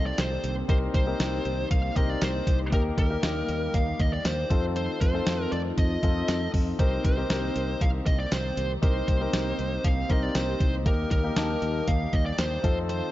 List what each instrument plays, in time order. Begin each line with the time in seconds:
Already playing: fingered electric bass C2, analog synth pad D#3 A#3 C4 G4, grand piano C4 D#4 G4 A4 A#4 C5
0.06 lead electric guitar D5
0.18 fingered electric bass C2, lead electric guitar C5, snare, closed hi-hat
0.44 fingered electric bass C2, closed hi-hat
0.68 fingered electric bass C2, grand piano C4 D#4 G4 A#4, lead electric guitar C5, analog synth pad D5, kick, closed hi-hat
0.94 fingered electric bass C2, lead electric guitar C5, kick, closed hi-hat
1.06 grand piano C4 D#4 G4 A#4
1.20 fingered electric bass C2, snare, closed hi-hat, tambourine
1.45 fingered electric bass C2, closed hi-hat
1.71 fingered electric bass C2, lead electric guitar F5, kick, closed hi-hat
1.96 fingered electric bass C2, grand piano C4 D#4 G4 A#4, lead electric guitar D#5, kick, closed hi-hat
2.10 lead electric guitar D5
2.21 fingered electric bass C2, lead electric guitar C5, snare, closed hi-hat, tambourine
2.47 fingered electric bass C2, kick, closed hi-hat
2.72 fingered electric bass D#2, analog synth pad G3, grand piano A#3 D#4 G4 A#4, lead electric guitar A#4, kick, closed hi-hat
2.98 fingered electric bass D#2, lead electric guitar A#4, kick, closed hi-hat
3.10 grand piano A#3 D#4 G4 A#4
3.23 fingered electric bass D#2, grand piano A#3 D#4 G4 A#4, snare, closed hi-hat, tambourine
3.49 fingered electric bass D#2, closed hi-hat
3.74 fingered electric bass D#2, lead electric guitar F5, kick, closed hi-hat
3.99 fingered electric bass D#2, lead electric guitar D#5, kick, closed hi-hat
4.13 lead electric guitar D5
4.25 fingered electric bass D#2, lead electric guitar C5, snare, closed hi-hat, tambourine
4.50 fingered electric bass F2, analog synth pad A3 C4 F4, grand piano C4 D#4 F4 A4, kick, closed hi-hat
4.76 lead electric guitar C5, closed hi-hat
5.01 fingered electric bass F2, lead electric guitar C5, kick, closed hi-hat
5.13 grand piano C4 D#4 F4 A4
5.26 fingered electric bass F2, snare, closed hi-hat, tambourine
5.52 fingered electric bass F2, lead electric guitar D5, closed hi-hat
5.78 fingered electric bass F2, lead electric guitar D#5, kick, closed hi-hat
6.03 fingered electric bass F2, grand piano C4 D#4 F4 A4, kick, closed hi-hat
6.28 fingered electric bass F2, snare, closed hi-hat, tambourine
6.54 fingered electric bass F2, kick, open hi-hat
6.79 fingered electric bass C2, analog synth pad D#3 A#3 G4, grand piano C4 D#4 G4 A#4, lead electric guitar C5, kick, closed hi-hat
7.05 fingered electric bass C2, lead electric guitar C5, kick, closed hi-hat
7.17 grand piano C4 D#4 G4 A#4
7.29 fingered electric bass C2, grand piano C4 D#4 G4 A#4, snare, closed hi-hat, tambourine
7.56 fingered electric bass C2, closed hi-hat
7.81 fingered electric bass C2, lead electric guitar F5, kick, closed hi-hat
8.06 fingered electric bass C2, lead electric guitar D#5, kick, closed hi-hat
8.19 lead electric guitar D5
8.32 fingered electric bass C2, lead electric guitar C5, snare, closed hi-hat, tambourine
8.57 fingered electric bass C2, closed hi-hat
8.82 fingered electric bass C2, grand piano C4 D#4 G4 A#4, lead electric guitar C5, kick, closed hi-hat
9.08 fingered electric bass C2, lead electric guitar C5, kick, closed hi-hat
9.20 grand piano C4 D#4 G4 A#4
9.33 fingered electric bass C2, snare, closed hi-hat, tambourine
9.59 fingered electric bass C2, closed hi-hat
9.84 fingered electric bass C2, lead electric guitar F5, kick, closed hi-hat
10.09 fingered electric bass C2, grand piano C4 D#4 G4 A#4, lead electric guitar D#5, kick, closed hi-hat
10.23 lead electric guitar D5
10.35 fingered electric bass C2, lead electric guitar C5, snare, closed hi-hat, tambourine
10.60 fingered electric bass C2, kick, closed hi-hat
10.86 fingered electric bass D#2, analog synth pad G3 A#3, grand piano A#3 D#4 G4 A#4, lead electric guitar A#4, kick, closed hi-hat
11.11 fingered electric bass D#2, lead electric guitar A#4, kick, closed hi-hat
11.23 grand piano A#3 D#4 G4 A#4
11.36 fingered electric bass D#2, grand piano A#3 D#4 G4 A5, snare, closed hi-hat, tambourine
11.62 fingered electric bass D#2, closed hi-hat
11.88 fingered electric bass D#2, lead electric guitar F5, kick, closed hi-hat
12.13 fingered electric bass D#2, lead electric guitar D#5, kick, closed hi-hat
12.26 lead electric guitar D5
12.38 fingered electric bass D#2, lead electric guitar C5, snare, closed hi-hat, tambourine
12.63 fingered electric bass F2, analog synth pad A3 C4 F4, grand piano C4 D#4 F4 A4, kick, closed hi-hat
12.89 lead electric guitar C5, closed hi-hat